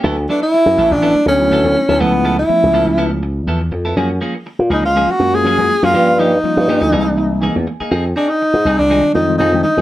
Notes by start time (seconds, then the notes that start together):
0.04 D2 F#3 B3 E4 A4
0.17 muted clean electric guitar stroke
0.29 F#3 B3 D4 E4 A4
0.42 E4, muted clean electric guitar stroke
0.54 muted clean electric guitar stroke
0.66 F#2
0.77 A1 F#3 B3 E4 A4
0.91 A1 D4, muted clean electric guitar stroke
1.02 F#3 A3 B3 D4 E4 A4
1.15 muted slap bass stroke, muted clean electric guitar stroke
1.26 D2 F#3 A3 B3 C#4 D4 F#4, muted clean electric guitar stroke
1.40 F#3 A3 B3 D4 E4
1.51 D2 F#3 B3 E4 A4
1.64 D2 F#3 A3 B3 D4 E4, muted clean electric guitar stroke
1.76 muted clean electric guitar stroke
1.89 D2 F#3 A3 B3 D4 E4 A4
2.00 C#2 F3 A3 B3 C#4 E4 A4
2.13 muted clean electric guitar stroke
2.24 F3 B3 E4 A4
2.38 E4, muted clean electric guitar stroke
2.49 F3 A3 B3 C#4 E4, muted clean electric guitar stroke, muted slap bass stroke
2.63 C#2
2.73 C#2 F3 B3 E4 A4
2.87 C#2, muted clean electric guitar stroke
2.98 F3 B3 E4 A4
3.11 muted clean electric guitar stroke
3.23 muted clean electric guitar stroke
3.47 E2 F3 B3 E4 A4
3.61 muted clean electric guitar stroke
3.72 F2, muted clean electric guitar stroke
3.85 B3 E4 A4
3.97 F#2 F3 A#3 C#4 G#4
4.10 muted clean electric guitar stroke
4.21 F3 A#3 C#4 G#4
4.35 muted clean electric guitar stroke
4.46 muted clean electric guitar stroke
4.59 A#2
4.70 C#2 F3 A#3 C#4 D#4 G#4
4.83 C#2 F4, muted clean electric guitar stroke
4.95 F3 F#3 G#3 A#3 C#4 F4 G#4
5.08 F#4, muted slap bass stroke, muted clean electric guitar stroke
5.19 F#2 F#3 G#3 A#3 C#4 F4, muted clean electric guitar stroke
5.32 F#3 G#3 A#3 C#4 F4 G#4
5.44 F#2 F3 A#3 C#4 G#4
5.57 F#2 F#3 G#3 A#3 C#4 F4, muted clean electric guitar stroke
5.70 muted clean electric guitar stroke
5.83 F#2 F#3 G#3 A#3 C#4 F4 G#4
5.94 G2 F3 G3 A#3 C#4 F4 G4
6.09 muted clean electric guitar stroke
6.19 F3 A#3 C#4 D#4 G4
6.33 muted clean electric guitar stroke
6.43 F3 G3 A#3 C#4 F4, muted slap bass stroke, muted clean electric guitar stroke
6.57 G2
6.68 G2 F3 A#3 C#4 G4
6.81 D2, muted clean electric guitar stroke
6.91 C2 E3 G#3 A#3 C4 D#4 G#4
7.07 muted clean electric guitar stroke
7.17 E5, muted clean electric guitar stroke
7.41 E3 A#3 D#4 G#4 G#5
7.56 E2, muted clean electric guitar stroke
7.67 muted clean electric guitar stroke
7.80 A#3 D#4 G#4, muted slap bass stroke
7.91 F2 C4 D#4 G#4
8.06 muted clean electric guitar stroke
8.16 C4 D4 D#4 G#4
8.29 D#4, muted clean electric guitar stroke
8.42 muted clean electric guitar stroke
8.53 G#2
8.65 C2 C4 D#4 G#4
8.78 C2 D4, muted clean electric guitar stroke
8.89 D#3 G3 G#3 C4 D#4 F4 G#4
9.04 muted clean electric guitar stroke
9.14 F2 D#3 G3 G#3 C4 D#4 F4, muted clean electric guitar stroke
9.27 D#3 G3 G#3 C4 F4
9.38 F2 C4 D#4 G#4
9.52 F2 D#3 G3 G#3 C4 D4, muted clean electric guitar stroke
9.63 D#4, muted clean electric guitar stroke
9.77 F2 D#3 G3 G#3 C4 G#4